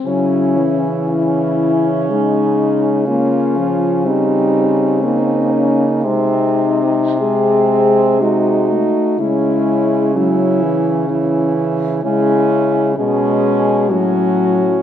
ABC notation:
X:1
M:3/4
L:1/8
Q:1/4=61
K:C#m
V:1 name="French horn"
C2 E2 D2 | C2 ^B,3 C | D2 G2 F2 | E2 C3 z |
E2 G2 F2 |]
V:2 name="French horn"
E2 C4 | ^E2 D2 D2 | ^B, z B,2 D2 | C2 E2 E2 |
C2 C2 C2 |]
V:3 name="French horn" clef=bass
F, E,3 G,2 | ^A, ^E, =G,2 A,2 | G, z G,2 G, A, | G,2 F, E, E,2 |
G,2 G,2 F,2 |]
V:4 name="French horn" clef=bass
C,6- | C,6 | ^B,,4- B,, z | C,6 |
C,2 B,,2 A,,2 |]